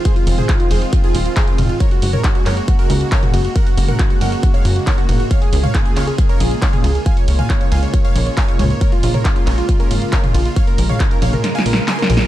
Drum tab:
RD |------x-----------x-----------x-----------x-----|------x-----------x-----------x-----------x-----|------x-----------x-----------x-----------x-----|------x-----------x-----------x-----------x-----|
HH |x--x--o--x--x--x--o--x--x--x--o--x--x--x--o--x--|x--x--o--x--x--x--o--x--x--x--o--x--x--x--o--x--|x--x--o--x--x--x--o--x--x--x--o--x--x--x--o--x--|x--x--o--x--x--x--o--x--x--x--o--x--x--x--o--x--|
CP |------------x-----------------------x-----------|------------x-----x-----------------x-----------|------------x-----------------------x-----------|------------x-----x-----------------x-----------|
SD |------------------------------------------------|------------------------------------------------|------------------------------------------------|------------------------------------------------|
T2 |---------o--------------------------------o-----|---------o-----------------------------o--------|---------o--------------------------------o-----|---------o-----------------------------o--------|
BD |o-----------o-----------o-----------o-----------|o-----------o-----------o-----------o-----------|o-----------o-----------o-----------o-----------|o-----------o-----------o-----------o-----------|

RD |------x-----------x-----------x-----------x-----|------x-----------x-----------x-----------x-----|------x-----------x-----------x-----------x-----|
HH |x--x--o--x--x--x--o--x--x--x--o--x--x--x--o--x--|x--x--o--x--x--x--o--x--x--x--o--x--x--x--o--x--|x--x--o--x--x--x--o--x--x--x--o--x--x--x--o--x--|
CP |------------x-----------------------x-----------|------------x-----x-----------------x-----------|------------x-----------------------x-----------|
SD |------------------------------------------------|------------------------------------------------|------------------------o---o---o---o---o---o---|
T2 |---------o--------------------------------o-----|---------o-----------------------------o--------|---------o-----------o--------------------o-----|
BD |o-----------o-----------o-----------o-----------|o-----------o-----------o-----------o-----------|o-----------o-----------------------------------|